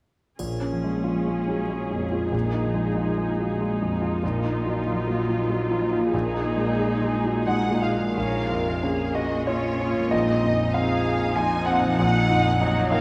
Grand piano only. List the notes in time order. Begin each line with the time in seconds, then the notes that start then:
0.39 A#1
0.61 C#4
0.84 G#3
1.04 F4
1.27 G#3
1.48 F#3
1.70 G#3
1.91 F2
2.12 F4
2.32 A#1
2.53 D#4
2.74 G#3
2.96 F4
3.18 G#3
3.40 F#3
3.61 G#3
3.82 F2
4.01 F4
4.23 A#1
4.44 D#4
4.66 F#3
4.87 F4
5.08 F#3
5.29 F3
5.50 F#3
5.71 F3
5.92 F4
6.14 A#1
6.34 D#4
6.57 G#3
6.79 G#4
7.02 G#3
7.25 F#3
7.47 G#3 F#5
7.71 A#2
7.82 F5
7.94 G#4
8.17 A#1
8.51 F2
8.83 C#4
9.15 G#4 D#5
9.47 F4 C#5
9.81 C#4
10.11 A#1 D#5
10.44 F2
10.74 C4 F5
11.05 G#4
11.36 F4 G#5
11.66 C4 F#5
12.00 A#1
12.30 F2
12.61 D#4
12.92 A#4 F5